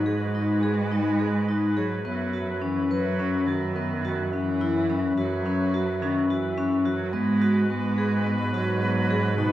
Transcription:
0.00 2.07 G#2 medium
0.00 1.89 G#3 medium
0.00 1.89 F#4 medium
0.00 7.10 B4 medium
0.05 1.78 G#3 loud
0.05 0.30 G#4 medium
0.35 0.59 D#4 medium
0.63 0.87 G#4 medium
0.92 1.15 D#4 medium
1.19 1.44 G#4 medium
1.49 1.73 D#4 medium
1.77 2.04 F#3 medium
1.77 2.01 G#4 medium
2.05 7.16 F#2 medium
2.05 2.64 F#3 medium
2.05 7.10 F#3 medium
2.05 2.29 B3 medium
2.05 7.10 E5 medium
2.33 2.58 F#4 medium
2.62 2.92 E3 medium
2.62 2.86 C#4 medium
2.91 3.48 F#3 loud
2.91 3.15 B4 medium
3.19 3.44 C#4 medium
3.47 4.33 D#3 loud
3.47 3.72 F#4 medium
3.76 4.00 B3 medium
4.05 4.29 F#4 medium
4.32 5.17 E3 loud
4.32 4.57 C#4 medium
4.61 4.85 E4 loud
4.90 5.14 C#4 medium
5.17 6.03 F#3 loud
5.17 5.41 F#4 medium
5.46 5.70 C#4 medium
5.74 5.98 F#4 loud
6.01 6.27 D#3 loud
6.01 6.26 C#4 medium
6.28 6.86 E3 loud
6.28 6.54 F#4 medium
6.58 6.82 C#4 medium
6.85 7.14 F#3 loud
6.85 7.09 F#4 medium
7.12 9.52 G#2 loud
7.12 7.68 G#3 loud
7.12 9.52 G#3 medium
7.12 7.37 B3 loud
7.12 9.52 F#4 medium
7.12 9.52 B4 loud
7.42 7.65 F#4 medium
7.69 8.49 G#3 loud
7.69 7.94 B3 loud
7.98 8.22 G#4 medium
8.26 8.50 B3 loud
8.52 9.39 F#3 loud
8.52 8.78 F#4 medium
8.82 9.06 B3 medium
9.11 9.34 G#4 medium
9.37 9.52 B2 loud
9.37 9.52 D#4 medium

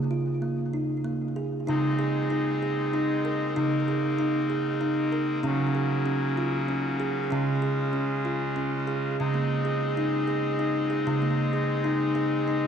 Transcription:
0.00 0.78 C#3 medium
0.00 0.11 A#3 medium
0.11 0.42 F4 medium
0.42 0.74 A#3 medium
0.73 1.05 D#4 medium
1.04 1.36 A#3 medium
1.36 1.68 G#4 medium
1.67 2.66 C#3 medium
1.67 3.54 G#3 soft
1.67 5.40 C4 medium
1.67 1.99 D#4 medium
1.67 5.40 D#4 medium
1.99 2.30 G#4 medium
2.30 2.62 D#4 medium
2.62 2.94 G#4 medium
2.93 3.25 D#4 medium
3.25 3.56 A#4 medium
3.56 4.54 C#3 medium
3.56 7.28 A#3 soft
3.56 3.88 D#4 medium
3.88 4.19 G#4 medium
4.19 4.50 D#4 medium
4.50 4.81 G#4 medium
4.81 5.12 D#4 medium
5.12 5.44 A#4 medium
5.43 6.41 C#3 medium
5.43 9.16 C#3 medium
5.43 7.30 F#3 medium
5.43 5.75 C#4 medium
5.75 6.06 G#4 medium
6.06 6.37 C#4 medium
6.37 6.69 F4 medium
6.68 7.00 C#4 medium
7.00 7.31 G#4 medium
7.30 8.29 C#3 medium
7.30 9.16 G#3 soft
7.30 7.62 C#4 medium
7.30 9.16 F4 medium
7.62 7.94 G#4 medium
7.93 8.25 C#4 medium
8.25 8.56 F4 medium
8.56 8.87 C#4 medium
8.87 9.19 G#4 medium
9.18 10.17 C#3 medium
9.18 12.67 G#3 medium
9.18 12.67 C4 medium
9.18 12.67 D#4 medium
9.34 9.66 A#3 medium
9.65 9.97 G#4 medium
9.97 10.29 D#4 medium
10.27 10.59 G#4 medium
10.59 10.91 D#4 medium
10.90 11.05 G#4 medium
11.07 12.04 C#3 medium
11.22 11.53 A#3 medium
11.53 11.85 G#4 medium
11.84 12.16 D#4 medium
12.15 12.47 G#4 medium
12.48 12.67 D#4 medium

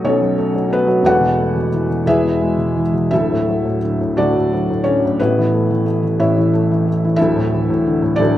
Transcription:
0.00 0.04 B1 medium
0.00 0.04 B2 medium
0.00 0.22 F#3 soft
0.00 0.38 A3 soft
0.00 1.05 D#4 medium
0.00 1.05 F#4 medium
0.00 0.07 A4 medium
0.00 1.05 D#5 medium
0.04 1.00 B1 medium
0.04 1.01 B2 medium
0.04 0.68 C#4 medium
0.04 0.68 A4 medium
0.04 0.73 C#5 medium
0.22 0.53 F#3 medium
0.38 0.68 A3 medium
0.54 0.86 F#3 soft
0.70 1.02 A3 medium
0.70 1.03 B3 medium
0.70 1.05 B4 medium
0.87 1.03 F#3 medium
1.03 2.01 E1 medium
1.03 2.02 E2 medium
1.03 1.68 F#4 medium
1.03 1.68 F#5 medium
1.07 1.69 A4 medium
1.07 1.69 B4 medium
1.20 1.54 B2 medium
1.38 2.04 A3 soft
1.56 1.88 B2 soft
1.74 2.06 E3 soft
1.89 2.05 B2 soft
2.06 3.07 E1 medium
2.06 3.08 E2 medium
2.06 2.82 E4 medium
2.06 2.82 G#4 medium
2.06 2.82 B4 medium
2.06 2.81 E5 medium
2.24 2.56 B2 soft
2.41 3.09 G#3 soft
2.58 2.92 B2 soft
2.76 3.10 E3 soft
2.94 3.11 B2 soft
3.11 4.17 D1 medium
3.11 4.17 D2 medium
3.11 3.79 E4 medium
3.11 3.79 A4 medium
3.11 3.77 E5 medium
3.32 3.64 A2 soft
3.48 4.52 F#3 soft
3.65 3.99 A2 soft
3.84 4.84 D3 soft
4.01 4.34 A2 soft
4.17 5.15 D1 medium
4.17 5.17 D2 medium
4.17 4.81 D4 medium
4.17 4.81 F#4 medium
4.17 4.81 D5 medium
4.36 4.69 A2 soft
4.53 5.18 F#3 medium
4.70 5.04 A2 soft
4.84 5.18 D3 soft
4.84 5.16 C#4 medium
4.84 5.16 C#5 medium
5.05 5.19 A2 soft
5.20 6.19 A1 medium
5.20 6.18 A2 medium
5.20 5.83 B3 medium
5.20 5.83 E4 medium
5.20 5.82 B4 medium
5.38 5.69 E3 soft
5.54 5.84 A3 soft
5.70 6.01 E3 soft
5.86 6.52 A3 soft
6.03 6.36 E3 soft
6.20 7.14 A1 medium
6.20 7.15 A2 medium
6.20 6.89 E4 medium
6.20 6.89 C#5 medium
6.20 6.89 E5 medium
6.37 6.70 E3 soft
6.53 6.86 A3 medium
6.71 7.03 E3 soft
6.88 7.18 A3 soft
7.05 7.19 E3 medium
7.16 8.13 E4 medium
7.16 8.13 A4 medium
7.16 8.19 E5 medium
7.21 8.18 D1 medium
7.21 8.18 D2 medium
7.36 7.68 A2 medium
7.54 8.38 E3 soft
7.70 8.01 A2 soft
7.87 8.38 D3 medium
8.02 8.35 A2 medium
8.16 8.38 D1 medium
8.16 8.38 D2 medium
8.16 8.38 D4 medium
8.16 8.38 A4 medium
8.16 8.38 D5 medium

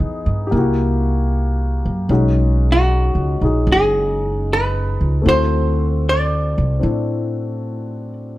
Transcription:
0.00 0.24 E2 medium
0.00 0.51 B3 medium
0.00 0.52 D#4 soft
0.00 0.53 E4 soft
0.00 0.54 G#4 medium
0.26 0.50 G2 medium
0.47 2.07 G4 soft
0.51 1.81 C2 medium
0.51 2.09 A#3 soft
0.51 2.11 E4 soft
0.58 2.10 F#4 medium
1.86 2.08 F#2 medium
2.09 3.10 B1 medium
2.09 5.24 G#3 soft
2.09 5.24 C#4 soft
2.09 3.40 D#4 soft
2.09 3.41 F#4 medium
2.72 3.72 F#4 medium
3.15 3.39 C#2 medium
3.41 3.65 A#1 medium
3.41 5.24 D#4 soft
3.41 5.24 F#4 soft
3.41 5.25 G#4 soft
3.67 4.96 F#1 medium
3.72 4.50 G#4 medium
4.53 5.28 B4 medium
5.01 5.23 C#2 medium
5.22 6.53 D2 medium
5.22 8.37 A3 soft
5.22 6.78 C4 soft
5.22 6.81 E4 soft
5.27 8.38 F#4 soft
5.27 6.07 C5 medium
6.09 8.13 D5 medium
6.58 6.80 C2 medium
6.79 8.35 A2 medium
6.79 8.37 C4 soft
6.79 8.38 D4 soft
6.79 8.38 E4 soft

